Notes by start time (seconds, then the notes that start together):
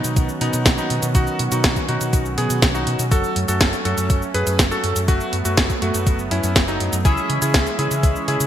Already playing: D#3 F#3 B3 C#4 D#4 F#4
0.04 B2, closed hi-hat, cabasa
0.16 B1, kick, closed hi-hat, cabasa
0.29 cabasa
0.41 B2 B3 D#4, closed hi-hat
0.53 B2, closed hi-hat, cabasa
0.66 B1, kick, snare, closed hi-hat, cabasa
0.78 B3 D#4, cabasa
0.90 B2, closed hi-hat
1.03 B2, closed hi-hat, cabasa
1.15 B1 D#4 F#4, kick, closed hi-hat, cabasa
1.27 cabasa
1.39 B2, closed hi-hat
1.52 B2 D#4 F#4, closed hi-hat, cabasa
1.64 B1, kick, snare, closed hi-hat, cabasa
1.76 kick, closed hi-hat, cabasa
1.89 B2 D#4 F#4, closed hi-hat
2.01 B2, closed hi-hat, cabasa
2.13 B1, kick, closed hi-hat, cabasa
2.25 cabasa
2.38 B2 B3 G#4, closed hi-hat
2.50 B2, closed hi-hat, cabasa
2.62 B1, kick, snare, closed hi-hat, cabasa
2.75 D#4 F#4, cabasa
2.87 B2, closed hi-hat
2.99 B2, closed hi-hat, cabasa
3.11 F#1 A3 C#4 F#4 A4, kick, closed hi-hat, cabasa
3.24 cabasa
3.36 F#2, closed hi-hat
3.48 F#2 F#4 A4, closed hi-hat, cabasa
3.61 F#1, kick, snare, closed hi-hat, cabasa
3.73 closed hi-hat, cabasa
3.85 F#2 F#4 A4, closed hi-hat
3.98 F#2, closed hi-hat, cabasa
4.10 F#1, kick, closed hi-hat, cabasa
4.22 cabasa
4.34 F#2 G#4 B4, closed hi-hat
4.47 F#2, closed hi-hat, cabasa
4.59 F#1, kick, snare, closed hi-hat, cabasa
4.71 F#4 A4, cabasa
4.84 F#2, closed hi-hat
4.96 F#2, closed hi-hat, cabasa
5.08 F#1 A3 B3 F#4, kick, closed hi-hat, cabasa
5.21 cabasa
5.33 F#2, closed hi-hat
5.45 F#2 A3 F#4, closed hi-hat, cabasa
5.57 F#1, kick, snare, closed hi-hat, cabasa
5.70 kick, closed hi-hat, cabasa
5.82 F#2 A3 F#4, closed hi-hat
5.94 F#2, closed hi-hat, cabasa
6.07 F#1, kick, closed hi-hat, cabasa
6.19 cabasa
6.31 F#2 C#4 E4, closed hi-hat
6.43 F#2, closed hi-hat, cabasa
6.56 F#1, kick, snare, closed hi-hat, cabasa
6.68 F#3 D#4, closed hi-hat, cabasa
6.80 F#2, closed hi-hat
6.93 F#2, closed hi-hat, cabasa
7.05 C#2 E3 G#3 C#4 E4 G#4 E5, kick, closed hi-hat, cabasa
7.17 cabasa
7.29 C#3, closed hi-hat
7.42 C#3 E4 G#4, closed hi-hat, cabasa
7.54 C#2, kick, snare, closed hi-hat, cabasa
7.67 closed hi-hat, cabasa
7.79 C#3 E4 G#4, closed hi-hat
7.91 C#3, closed hi-hat, cabasa
8.03 C#2, kick, closed hi-hat, cabasa
8.16 cabasa
8.28 C#3 E4 G#4, closed hi-hat
8.40 C#3, closed hi-hat, cabasa